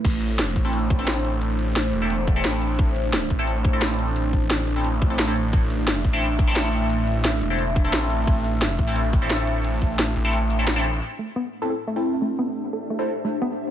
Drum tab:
CC |x-------|--------|--------|--------|
HH |xxxxxxxx|xxxxxxxx|xxxxxxxx|xxxxxxxx|
SD |--o---o-|--o---o-|--o---o-|--o---o-|
BD |o--o-o--|-----o--|o--o-o--|-o---o--|

CC |--------|--------|--------|--------|
HH |xxxxxxxx|xxxxxxxx|xxxxxxxx|xxxxxxxx|
SD |--o---o-|--o---o-|--o---o-|--o---o-|
BD |o--o-o--|-----o--|o--o-o--|-o------|

CC |--------|--------|
HH |--------|--------|
SD |--------|--------|
BD |--------|--------|